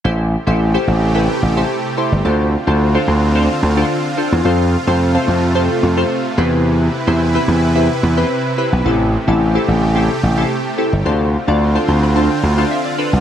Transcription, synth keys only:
\new Staff \with { instrumentName = "Synth keys" } { \time 4/4 \key a \minor \tempo 4 = 109 << { r1 | r1 | r1 | r1 |
r1 | r4. c'''16 b''16 a''16 g''8 f''16 e''16 d''8. | } \\ { <e' g' a' c''>8 r16 <e' g' a' c''>16 r16 <e' g' a' c''>8 r16 <e' g' a' b'>8 r16 <e' g' a' c''>8 r16 <e' g' a' c''>16 r16 | <d' f' a' c''>8 r16 <d' f' a' c''>16 r16 <d' f' a' c''>8 r16 <d' f' a' c''>8 r16 <d' f' a' c''>8 r16 <d' f' a' c''>16 r16 | <c' f' a' c''>8 r16 <c' f' a' c''>16 r16 <c' f' a' c''>8 r16 <c' f' a' c''>8 r16 <c' f' a' c''>8 r16 <c' e' g' b'>8~ | <c' e' g' b'>8 r16 <c' e' g' c''>16 r16 <c' e' g' b'>8 r16 <c' e' g' b'>8 r16 <c' e' g' b'>8 r16 <c' e' g' b'>16 r16 |
<c' e' g' a'>8 r16 <c' e' g' a'>16 r16 <c' e' g' a'>8 r16 <c' e' g' a'>8 r16 <c' e' g' a'>8 r16 <c' e' g' a'>16 r16 | <d' f' a' c''>8 r16 <d' f' a' d''>16 r16 <d' f' a' c''>8 r16 <d' f' a' c''>8 r16 <d' f' a' c''>8 r16 <d' f' a' b'>16 r16 | } >> }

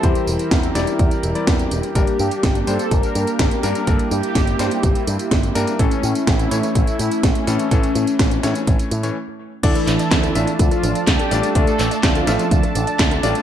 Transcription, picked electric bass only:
\new Staff \with { instrumentName = "Picked electric bass" } { \clef bass \time 4/4 \key d \minor \tempo 4 = 125 e,8 e,,8 e,8 e,,8 e,8 e,,8 e,8 e,,8 | g,,8 g,8 g,,8 g,8 g,,8 g,8 g,,8 g,8 | g,,8 g,8 g,,8 g,8 g,,8 g,8 g,,8 g,8 | a,,8 a,8 a,,8 a,8 a,,8 a,8 a,,8 a,8 |
a,,8 a,8 a,,8 a,8 a,,8 a,8 r4 | d,8 a,,8 d,8 a,,8 d,8 a,,8 d,8 a,,8 | d,8 a,,8 d,8 a,,8 d,8 a,,8 d,8 a,,8 | }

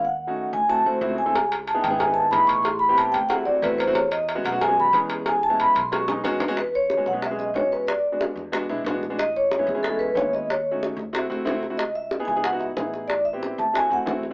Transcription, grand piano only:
\new Staff \with { instrumentName = "Grand piano" } { \time 4/4 \key e \major \tempo 4 = 184 r8. <a cis' dis' fis'>8. r8 <a c' e' fis'>16 r16 <a c' e' fis'>16 r16 <a c' e' fis'>8 r16 <a c' e' a'>16 | r4 r16 <b dis' e' gis'>16 r16 <b dis' e' gis'>16 r16 <b dis' e' b'>8 r16 <b dis' e' gis'>4 | r8. <b c' e' g'>8. r8 <a c' e' fis'>16 r16 <a c' e' fis'>16 r16 <a c' e' fis'>8 r16 <a c' e' fis'>16 | r4 r16 <gis b cis' fis'>16 r16 <gis b cis' fis'>16 r16 <gis b cis' fis'>8 r16 <gis b cis' gis'>4~ |
<gis b cis' gis'>16 r8 <gis b cis' e'>8. r8 <gis b cis' fis'>16 r16 <gis b cis' dis'>16 r16 <gis b cis' fis'>8 r16 <gis b cis' fis'>16 | r4 r16 <gis b cis' fis'>16 r16 <gis b cis' gis'>16 r16 <gis b cis' gis'>8 r16 <gis b cis' fis'>4 | r8. <gis b d' fis'>8. r8 <gis b d' fis'>16 r16 <gis b d' e'>16 r16 <gis b d' fis'>8 r16 <gis b d' fis'>16 | r4 r16 <gis b cis' e'>16 r16 <gis b cis' e'>16 r16 <gis b cis' e'>8 r16 <gis b cis' e'>4 |
r8. <a cis' dis' fis'>8. r8 <a c' e' fis'>16 r16 <a c' e' fis'>16 r16 <a c' e' fis'>8 r16 <a c' e' fis'>16 | r4 r16 <b dis' e' gis'>16 r16 <b dis' e' gis'>16 r16 <b dis' e' fis'>8 r16 <b dis' e' gis'>4 | r8. <b c' e' g'>8. r8 <a c' e' fis'>16 r16 <a c' e' fis'>16 r16 <a c' e' fis'>8 r8 | }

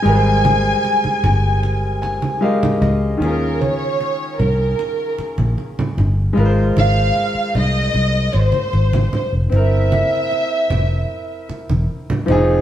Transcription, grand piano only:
\new Staff \with { instrumentName = "Grand piano" } { \time 4/4 \key aes \major \tempo 4 = 76 << { r2 r8 aes''8 f''8 ees''8 | r1 | r1 | r1 | } \\ { <g aes bes' ces'' c''>2. <aes g' bes' ees''>4 | <ees des' f' aes'>1 | <aes f' bes' ces'' c''>1 | <c' e' bes'>2.~ <c' e' bes'>8 <f c' ees' aes'>8 | } >> }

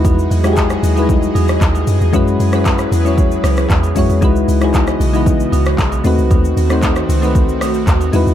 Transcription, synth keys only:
\new Staff \with { instrumentName = "Synth keys" } { \time 4/4 \key b \mixolydian \tempo 4 = 115 <gis dis' e' fis' b'>8 r16 <gis dis' e' fis' g' gis'>8. r16 <g gis dis' e' fis' b'>4. r8. | <gis cis' e' fis' b'>8 r16 <gis cis' e' fis' b'>8. r16 <gis cis' e' fis' cis''>4. r16 <gis cis' e' fis' cis''>8 | <gis dis' e' fis' b'>8 r16 <gis dis' e' fis' gis'>8. r16 <gis dis' e' fis' b'>4. r16 <a c' dis' fis' b'>8~ | <a c' dis' fis' b'>8 r16 <a c' dis' fis' c''>8. r16 <a c' dis' fis' b'>4. r16 <gis dis' e' fis' b'>8 | }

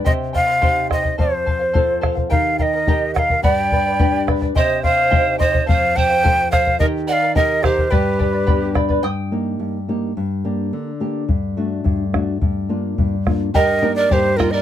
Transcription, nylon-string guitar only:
\new Staff \with { instrumentName = "Nylon-string guitar" } { \time 2/4 \key ees \lydian \tempo 4 = 107 c4 <ees' g' c''>4 | f,4 <c' f' a'>4 | ees4 <ees' g' bes'>4 | g,4 <d' g' b'>4 |
c4 <ees' g' c''>4 | f,4 <f' a' c''>4 | ees4 <ees' g' bes'>4 | g,4 <b d' g'>4 |
g,8 <bes ees' g'>8 g,8 <bes ees' g'>8 | g,8 <bes d' g'>8 d8 <bes d' g'>8 | g,8 <a d' fis'>8 g,8 <a d' fis'>8 | g,8 <bes d' f'>8 g,8 <bes d' f'>8 |
g,8 <bes ees' g'>8 g,8 <bes ees' g'>8 | }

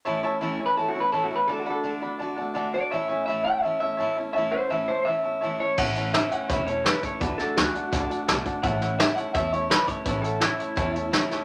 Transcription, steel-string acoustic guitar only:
\new Staff \with { instrumentName = "Steel-string acoustic guitar" } { \time 4/4 \key a \major \tempo 4 = 168 <a, e a cis' e'>8 <a cis' e'>8 <a, e a cis' e'>8 <a cis' e'>8 <e a cis' e'>8 <a cis' e'>8 <a, e a cis' e'>8 <a cis' e'>8 | <d a d' fis'>8 <a d' fis'>8 <d a d' fis'>8 <a d' fis'>8 <d a d' fis'>8 <a d' fis'>8 <d a d' fis'>8 <a d' fis'>8 | <a, e a cis' e'>8 <a cis' e'>8 <a, e a cis' e'>8 <a cis' e'>8 <e a cis' e'>8 <a cis' e'>8 <a, e a cis' e'>8 <a cis' e'>8 | <a, e a cis' e'>8 <a cis' e'>8 <a, e a cis' e'>8 <a cis' e'>8 <e a cis' e'>8 <a cis' e'>8 <a, e a cis' e'>8 <a cis' e'>8 |
<a, e a cis' e'>8 <a cis' e'>8 <e a cis' e'>8 <a cis' e'>8 <a, e a cis' e'>8 <a cis' e'>8 <e a cis' e'>8 <a cis' e'>8 | <d a d' fis'>8 <a d' fis'>8 <d a d' fis'>8 <a d' fis'>8 <d a d' fis'>8 <a d' fis'>8 <d a d' fis'>8 <a d' fis'>8 | <a, e a cis' e'>8 <a cis' e'>8 <e e'>8 <a cis' e'>8 <a, e a cis' e'>8 <a cis' e'>8 <e e'>8 <a cis' e'>8 | <a, e a cis' e'>8 <a cis' e'>8 <e a cis' e'>8 <a cis' e'>8 <a, e a cis' e'>8 <a cis' e'>8 <e a cis' e'>8 <a cis' e'>8 | }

